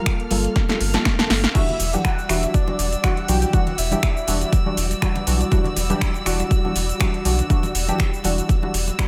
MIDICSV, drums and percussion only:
0, 0, Header, 1, 2, 480
1, 0, Start_track
1, 0, Key_signature, 1, "minor"
1, 0, Tempo, 495868
1, 1500, Time_signature, 4, 2, 24, 8
1, 8788, End_track
2, 0, Start_track
2, 0, Title_t, "Drums"
2, 58, Note_on_c, 9, 62, 57
2, 60, Note_on_c, 9, 26, 122
2, 60, Note_on_c, 9, 36, 96
2, 60, Note_on_c, 9, 42, 72
2, 155, Note_off_c, 9, 62, 0
2, 157, Note_off_c, 9, 26, 0
2, 157, Note_off_c, 9, 36, 0
2, 157, Note_off_c, 9, 42, 0
2, 191, Note_on_c, 9, 42, 37
2, 288, Note_off_c, 9, 42, 0
2, 297, Note_on_c, 9, 62, 79
2, 299, Note_on_c, 9, 46, 101
2, 393, Note_off_c, 9, 62, 0
2, 396, Note_off_c, 9, 46, 0
2, 430, Note_on_c, 9, 42, 52
2, 527, Note_off_c, 9, 42, 0
2, 540, Note_on_c, 9, 36, 113
2, 540, Note_on_c, 9, 38, 61
2, 540, Note_on_c, 9, 42, 69
2, 636, Note_off_c, 9, 38, 0
2, 636, Note_off_c, 9, 42, 0
2, 637, Note_off_c, 9, 36, 0
2, 664, Note_on_c, 9, 63, 61
2, 665, Note_on_c, 9, 62, 53
2, 671, Note_on_c, 9, 38, 56
2, 671, Note_on_c, 9, 42, 37
2, 760, Note_off_c, 9, 63, 0
2, 762, Note_off_c, 9, 62, 0
2, 768, Note_off_c, 9, 38, 0
2, 768, Note_off_c, 9, 42, 0
2, 780, Note_on_c, 9, 46, 101
2, 877, Note_off_c, 9, 46, 0
2, 908, Note_on_c, 9, 62, 76
2, 912, Note_on_c, 9, 38, 68
2, 912, Note_on_c, 9, 42, 55
2, 1005, Note_off_c, 9, 62, 0
2, 1008, Note_off_c, 9, 38, 0
2, 1008, Note_off_c, 9, 42, 0
2, 1020, Note_on_c, 9, 26, 122
2, 1020, Note_on_c, 9, 38, 86
2, 1020, Note_on_c, 9, 42, 66
2, 1021, Note_on_c, 9, 36, 92
2, 1116, Note_off_c, 9, 26, 0
2, 1116, Note_off_c, 9, 38, 0
2, 1116, Note_off_c, 9, 42, 0
2, 1117, Note_off_c, 9, 36, 0
2, 1152, Note_on_c, 9, 38, 83
2, 1152, Note_on_c, 9, 42, 39
2, 1158, Note_on_c, 9, 64, 86
2, 1248, Note_off_c, 9, 38, 0
2, 1248, Note_off_c, 9, 42, 0
2, 1254, Note_off_c, 9, 64, 0
2, 1259, Note_on_c, 9, 38, 92
2, 1259, Note_on_c, 9, 46, 92
2, 1263, Note_on_c, 9, 63, 78
2, 1266, Note_on_c, 9, 62, 56
2, 1356, Note_off_c, 9, 38, 0
2, 1356, Note_off_c, 9, 46, 0
2, 1360, Note_off_c, 9, 63, 0
2, 1362, Note_off_c, 9, 62, 0
2, 1392, Note_on_c, 9, 38, 89
2, 1489, Note_off_c, 9, 38, 0
2, 1500, Note_on_c, 9, 42, 66
2, 1500, Note_on_c, 9, 49, 72
2, 1501, Note_on_c, 9, 36, 112
2, 1504, Note_on_c, 9, 69, 43
2, 1597, Note_off_c, 9, 42, 0
2, 1597, Note_off_c, 9, 49, 0
2, 1598, Note_off_c, 9, 36, 0
2, 1601, Note_off_c, 9, 69, 0
2, 1631, Note_on_c, 9, 42, 36
2, 1634, Note_on_c, 9, 64, 93
2, 1728, Note_off_c, 9, 42, 0
2, 1731, Note_off_c, 9, 64, 0
2, 1740, Note_on_c, 9, 46, 105
2, 1744, Note_on_c, 9, 69, 77
2, 1747, Note_on_c, 9, 62, 60
2, 1837, Note_off_c, 9, 46, 0
2, 1841, Note_off_c, 9, 69, 0
2, 1844, Note_off_c, 9, 62, 0
2, 1871, Note_on_c, 9, 42, 53
2, 1875, Note_on_c, 9, 69, 31
2, 1876, Note_on_c, 9, 63, 100
2, 1968, Note_off_c, 9, 42, 0
2, 1972, Note_off_c, 9, 69, 0
2, 1973, Note_off_c, 9, 63, 0
2, 1981, Note_on_c, 9, 26, 126
2, 1981, Note_on_c, 9, 36, 101
2, 1981, Note_on_c, 9, 42, 67
2, 1981, Note_on_c, 9, 62, 75
2, 1985, Note_on_c, 9, 69, 47
2, 2078, Note_off_c, 9, 26, 0
2, 2078, Note_off_c, 9, 36, 0
2, 2078, Note_off_c, 9, 42, 0
2, 2078, Note_off_c, 9, 62, 0
2, 2082, Note_off_c, 9, 69, 0
2, 2116, Note_on_c, 9, 69, 29
2, 2212, Note_off_c, 9, 69, 0
2, 2220, Note_on_c, 9, 26, 62
2, 2221, Note_on_c, 9, 46, 102
2, 2224, Note_on_c, 9, 69, 74
2, 2317, Note_off_c, 9, 26, 0
2, 2317, Note_off_c, 9, 46, 0
2, 2321, Note_off_c, 9, 69, 0
2, 2352, Note_on_c, 9, 42, 52
2, 2354, Note_on_c, 9, 62, 52
2, 2356, Note_on_c, 9, 69, 32
2, 2448, Note_off_c, 9, 42, 0
2, 2451, Note_off_c, 9, 62, 0
2, 2452, Note_off_c, 9, 69, 0
2, 2460, Note_on_c, 9, 42, 72
2, 2462, Note_on_c, 9, 36, 115
2, 2464, Note_on_c, 9, 69, 44
2, 2557, Note_off_c, 9, 42, 0
2, 2558, Note_off_c, 9, 36, 0
2, 2561, Note_off_c, 9, 69, 0
2, 2590, Note_on_c, 9, 62, 74
2, 2594, Note_on_c, 9, 64, 79
2, 2599, Note_on_c, 9, 63, 66
2, 2687, Note_off_c, 9, 62, 0
2, 2691, Note_off_c, 9, 64, 0
2, 2696, Note_off_c, 9, 63, 0
2, 2701, Note_on_c, 9, 46, 100
2, 2705, Note_on_c, 9, 69, 81
2, 2798, Note_off_c, 9, 46, 0
2, 2801, Note_off_c, 9, 69, 0
2, 2832, Note_on_c, 9, 42, 54
2, 2835, Note_on_c, 9, 69, 34
2, 2928, Note_off_c, 9, 42, 0
2, 2932, Note_off_c, 9, 69, 0
2, 2940, Note_on_c, 9, 26, 127
2, 2940, Note_on_c, 9, 42, 70
2, 2941, Note_on_c, 9, 36, 100
2, 2944, Note_on_c, 9, 69, 43
2, 2947, Note_on_c, 9, 62, 53
2, 3037, Note_off_c, 9, 26, 0
2, 3037, Note_off_c, 9, 42, 0
2, 3038, Note_off_c, 9, 36, 0
2, 3041, Note_off_c, 9, 69, 0
2, 3044, Note_off_c, 9, 62, 0
2, 3071, Note_on_c, 9, 42, 38
2, 3167, Note_off_c, 9, 42, 0
2, 3179, Note_on_c, 9, 46, 99
2, 3182, Note_on_c, 9, 62, 77
2, 3183, Note_on_c, 9, 69, 74
2, 3187, Note_on_c, 9, 63, 97
2, 3276, Note_off_c, 9, 46, 0
2, 3279, Note_off_c, 9, 62, 0
2, 3280, Note_off_c, 9, 69, 0
2, 3284, Note_off_c, 9, 63, 0
2, 3311, Note_on_c, 9, 42, 54
2, 3314, Note_on_c, 9, 64, 83
2, 3315, Note_on_c, 9, 69, 33
2, 3407, Note_off_c, 9, 42, 0
2, 3411, Note_off_c, 9, 64, 0
2, 3411, Note_off_c, 9, 69, 0
2, 3420, Note_on_c, 9, 42, 61
2, 3421, Note_on_c, 9, 36, 118
2, 3424, Note_on_c, 9, 69, 41
2, 3517, Note_off_c, 9, 42, 0
2, 3518, Note_off_c, 9, 36, 0
2, 3521, Note_off_c, 9, 69, 0
2, 3551, Note_on_c, 9, 42, 37
2, 3551, Note_on_c, 9, 62, 55
2, 3555, Note_on_c, 9, 64, 92
2, 3648, Note_off_c, 9, 42, 0
2, 3648, Note_off_c, 9, 62, 0
2, 3652, Note_off_c, 9, 64, 0
2, 3660, Note_on_c, 9, 46, 107
2, 3664, Note_on_c, 9, 69, 78
2, 3757, Note_off_c, 9, 46, 0
2, 3761, Note_off_c, 9, 69, 0
2, 3784, Note_on_c, 9, 63, 88
2, 3792, Note_on_c, 9, 42, 50
2, 3796, Note_on_c, 9, 69, 30
2, 3799, Note_on_c, 9, 62, 73
2, 3881, Note_off_c, 9, 63, 0
2, 3889, Note_off_c, 9, 42, 0
2, 3893, Note_off_c, 9, 69, 0
2, 3896, Note_off_c, 9, 62, 0
2, 3900, Note_on_c, 9, 26, 127
2, 3900, Note_on_c, 9, 42, 68
2, 3901, Note_on_c, 9, 36, 108
2, 3904, Note_on_c, 9, 69, 45
2, 3997, Note_off_c, 9, 26, 0
2, 3997, Note_off_c, 9, 42, 0
2, 3998, Note_off_c, 9, 36, 0
2, 4001, Note_off_c, 9, 69, 0
2, 4035, Note_on_c, 9, 69, 28
2, 4132, Note_off_c, 9, 69, 0
2, 4137, Note_on_c, 9, 62, 57
2, 4141, Note_on_c, 9, 46, 107
2, 4145, Note_on_c, 9, 69, 75
2, 4234, Note_off_c, 9, 62, 0
2, 4238, Note_off_c, 9, 46, 0
2, 4241, Note_off_c, 9, 69, 0
2, 4272, Note_on_c, 9, 42, 52
2, 4276, Note_on_c, 9, 69, 31
2, 4369, Note_off_c, 9, 42, 0
2, 4373, Note_off_c, 9, 69, 0
2, 4381, Note_on_c, 9, 36, 118
2, 4381, Note_on_c, 9, 42, 69
2, 4383, Note_on_c, 9, 62, 77
2, 4385, Note_on_c, 9, 69, 44
2, 4478, Note_off_c, 9, 36, 0
2, 4478, Note_off_c, 9, 42, 0
2, 4480, Note_off_c, 9, 62, 0
2, 4482, Note_off_c, 9, 69, 0
2, 4515, Note_on_c, 9, 63, 62
2, 4611, Note_off_c, 9, 63, 0
2, 4621, Note_on_c, 9, 46, 107
2, 4625, Note_on_c, 9, 69, 78
2, 4718, Note_off_c, 9, 46, 0
2, 4722, Note_off_c, 9, 69, 0
2, 4752, Note_on_c, 9, 42, 51
2, 4754, Note_on_c, 9, 62, 52
2, 4756, Note_on_c, 9, 69, 31
2, 4849, Note_off_c, 9, 42, 0
2, 4851, Note_off_c, 9, 62, 0
2, 4853, Note_off_c, 9, 69, 0
2, 4861, Note_on_c, 9, 26, 121
2, 4861, Note_on_c, 9, 36, 99
2, 4861, Note_on_c, 9, 42, 68
2, 4865, Note_on_c, 9, 69, 44
2, 4958, Note_off_c, 9, 26, 0
2, 4958, Note_off_c, 9, 36, 0
2, 4958, Note_off_c, 9, 42, 0
2, 4962, Note_off_c, 9, 69, 0
2, 4986, Note_on_c, 9, 64, 93
2, 4991, Note_on_c, 9, 62, 74
2, 4993, Note_on_c, 9, 42, 38
2, 5083, Note_off_c, 9, 64, 0
2, 5088, Note_off_c, 9, 62, 0
2, 5090, Note_off_c, 9, 42, 0
2, 5098, Note_on_c, 9, 63, 86
2, 5101, Note_on_c, 9, 46, 107
2, 5105, Note_on_c, 9, 69, 73
2, 5195, Note_off_c, 9, 63, 0
2, 5198, Note_off_c, 9, 46, 0
2, 5202, Note_off_c, 9, 69, 0
2, 5233, Note_on_c, 9, 42, 53
2, 5237, Note_on_c, 9, 69, 34
2, 5330, Note_off_c, 9, 42, 0
2, 5334, Note_off_c, 9, 69, 0
2, 5339, Note_on_c, 9, 62, 51
2, 5341, Note_on_c, 9, 36, 121
2, 5342, Note_on_c, 9, 42, 59
2, 5345, Note_on_c, 9, 69, 43
2, 5436, Note_off_c, 9, 62, 0
2, 5438, Note_off_c, 9, 36, 0
2, 5438, Note_off_c, 9, 42, 0
2, 5442, Note_off_c, 9, 69, 0
2, 5463, Note_on_c, 9, 64, 101
2, 5474, Note_on_c, 9, 42, 35
2, 5559, Note_off_c, 9, 64, 0
2, 5570, Note_off_c, 9, 42, 0
2, 5579, Note_on_c, 9, 62, 78
2, 5581, Note_on_c, 9, 46, 110
2, 5585, Note_on_c, 9, 69, 71
2, 5676, Note_off_c, 9, 62, 0
2, 5678, Note_off_c, 9, 46, 0
2, 5682, Note_off_c, 9, 69, 0
2, 5710, Note_on_c, 9, 63, 101
2, 5713, Note_on_c, 9, 42, 49
2, 5717, Note_on_c, 9, 69, 29
2, 5807, Note_off_c, 9, 63, 0
2, 5810, Note_off_c, 9, 42, 0
2, 5813, Note_off_c, 9, 69, 0
2, 5821, Note_on_c, 9, 26, 125
2, 5821, Note_on_c, 9, 36, 109
2, 5821, Note_on_c, 9, 42, 62
2, 5825, Note_on_c, 9, 69, 44
2, 5918, Note_off_c, 9, 26, 0
2, 5918, Note_off_c, 9, 36, 0
2, 5918, Note_off_c, 9, 42, 0
2, 5922, Note_off_c, 9, 69, 0
2, 5946, Note_on_c, 9, 62, 51
2, 5956, Note_on_c, 9, 69, 28
2, 6043, Note_off_c, 9, 62, 0
2, 6053, Note_off_c, 9, 69, 0
2, 6061, Note_on_c, 9, 26, 64
2, 6061, Note_on_c, 9, 46, 110
2, 6065, Note_on_c, 9, 69, 72
2, 6158, Note_off_c, 9, 26, 0
2, 6158, Note_off_c, 9, 46, 0
2, 6162, Note_off_c, 9, 69, 0
2, 6192, Note_on_c, 9, 42, 50
2, 6196, Note_on_c, 9, 62, 76
2, 6196, Note_on_c, 9, 69, 31
2, 6289, Note_off_c, 9, 42, 0
2, 6292, Note_off_c, 9, 69, 0
2, 6293, Note_off_c, 9, 62, 0
2, 6301, Note_on_c, 9, 36, 126
2, 6301, Note_on_c, 9, 42, 63
2, 6305, Note_on_c, 9, 69, 43
2, 6397, Note_off_c, 9, 36, 0
2, 6398, Note_off_c, 9, 42, 0
2, 6402, Note_off_c, 9, 69, 0
2, 6435, Note_on_c, 9, 63, 63
2, 6438, Note_on_c, 9, 64, 80
2, 6532, Note_off_c, 9, 63, 0
2, 6534, Note_off_c, 9, 64, 0
2, 6540, Note_on_c, 9, 46, 108
2, 6544, Note_on_c, 9, 69, 77
2, 6547, Note_on_c, 9, 62, 43
2, 6637, Note_off_c, 9, 46, 0
2, 6641, Note_off_c, 9, 69, 0
2, 6644, Note_off_c, 9, 62, 0
2, 6673, Note_on_c, 9, 42, 48
2, 6677, Note_on_c, 9, 69, 32
2, 6770, Note_off_c, 9, 42, 0
2, 6773, Note_off_c, 9, 69, 0
2, 6773, Note_on_c, 9, 62, 82
2, 6781, Note_on_c, 9, 26, 123
2, 6781, Note_on_c, 9, 36, 102
2, 6781, Note_on_c, 9, 42, 66
2, 6785, Note_on_c, 9, 69, 43
2, 6870, Note_off_c, 9, 62, 0
2, 6877, Note_off_c, 9, 36, 0
2, 6878, Note_off_c, 9, 26, 0
2, 6878, Note_off_c, 9, 42, 0
2, 6882, Note_off_c, 9, 69, 0
2, 6912, Note_on_c, 9, 42, 37
2, 7009, Note_off_c, 9, 42, 0
2, 7020, Note_on_c, 9, 46, 114
2, 7024, Note_on_c, 9, 63, 97
2, 7024, Note_on_c, 9, 69, 73
2, 7117, Note_off_c, 9, 46, 0
2, 7120, Note_off_c, 9, 63, 0
2, 7121, Note_off_c, 9, 69, 0
2, 7152, Note_on_c, 9, 42, 52
2, 7155, Note_on_c, 9, 62, 46
2, 7156, Note_on_c, 9, 64, 73
2, 7156, Note_on_c, 9, 69, 33
2, 7249, Note_off_c, 9, 42, 0
2, 7251, Note_off_c, 9, 62, 0
2, 7253, Note_off_c, 9, 64, 0
2, 7253, Note_off_c, 9, 69, 0
2, 7260, Note_on_c, 9, 42, 63
2, 7261, Note_on_c, 9, 36, 115
2, 7264, Note_on_c, 9, 69, 42
2, 7357, Note_off_c, 9, 36, 0
2, 7357, Note_off_c, 9, 42, 0
2, 7361, Note_off_c, 9, 69, 0
2, 7388, Note_on_c, 9, 62, 76
2, 7392, Note_on_c, 9, 42, 34
2, 7396, Note_on_c, 9, 69, 32
2, 7398, Note_on_c, 9, 64, 88
2, 7485, Note_off_c, 9, 62, 0
2, 7489, Note_off_c, 9, 42, 0
2, 7493, Note_off_c, 9, 69, 0
2, 7495, Note_off_c, 9, 64, 0
2, 7501, Note_on_c, 9, 46, 110
2, 7505, Note_on_c, 9, 69, 77
2, 7598, Note_off_c, 9, 46, 0
2, 7602, Note_off_c, 9, 69, 0
2, 7632, Note_on_c, 9, 63, 99
2, 7633, Note_on_c, 9, 42, 50
2, 7637, Note_on_c, 9, 69, 30
2, 7729, Note_off_c, 9, 63, 0
2, 7729, Note_on_c, 9, 62, 53
2, 7730, Note_off_c, 9, 42, 0
2, 7734, Note_off_c, 9, 69, 0
2, 7741, Note_on_c, 9, 36, 112
2, 7742, Note_on_c, 9, 26, 124
2, 7742, Note_on_c, 9, 42, 66
2, 7746, Note_on_c, 9, 69, 44
2, 7826, Note_off_c, 9, 62, 0
2, 7837, Note_off_c, 9, 36, 0
2, 7839, Note_off_c, 9, 26, 0
2, 7839, Note_off_c, 9, 42, 0
2, 7843, Note_off_c, 9, 69, 0
2, 7876, Note_on_c, 9, 69, 29
2, 7973, Note_off_c, 9, 69, 0
2, 7976, Note_on_c, 9, 62, 76
2, 7982, Note_on_c, 9, 46, 104
2, 7985, Note_on_c, 9, 69, 71
2, 8073, Note_off_c, 9, 62, 0
2, 8078, Note_off_c, 9, 46, 0
2, 8082, Note_off_c, 9, 69, 0
2, 8113, Note_on_c, 9, 42, 48
2, 8117, Note_on_c, 9, 69, 32
2, 8210, Note_off_c, 9, 42, 0
2, 8214, Note_off_c, 9, 69, 0
2, 8221, Note_on_c, 9, 36, 116
2, 8221, Note_on_c, 9, 42, 67
2, 8225, Note_on_c, 9, 69, 44
2, 8318, Note_off_c, 9, 36, 0
2, 8318, Note_off_c, 9, 42, 0
2, 8322, Note_off_c, 9, 69, 0
2, 8348, Note_on_c, 9, 63, 69
2, 8354, Note_on_c, 9, 62, 48
2, 8445, Note_off_c, 9, 63, 0
2, 8451, Note_off_c, 9, 62, 0
2, 8462, Note_on_c, 9, 46, 109
2, 8466, Note_on_c, 9, 69, 74
2, 8558, Note_off_c, 9, 46, 0
2, 8562, Note_off_c, 9, 69, 0
2, 8590, Note_on_c, 9, 62, 66
2, 8594, Note_on_c, 9, 42, 51
2, 8597, Note_on_c, 9, 69, 31
2, 8687, Note_off_c, 9, 62, 0
2, 8690, Note_off_c, 9, 42, 0
2, 8694, Note_off_c, 9, 69, 0
2, 8700, Note_on_c, 9, 36, 101
2, 8701, Note_on_c, 9, 26, 117
2, 8701, Note_on_c, 9, 42, 64
2, 8705, Note_on_c, 9, 69, 46
2, 8788, Note_off_c, 9, 26, 0
2, 8788, Note_off_c, 9, 36, 0
2, 8788, Note_off_c, 9, 42, 0
2, 8788, Note_off_c, 9, 69, 0
2, 8788, End_track
0, 0, End_of_file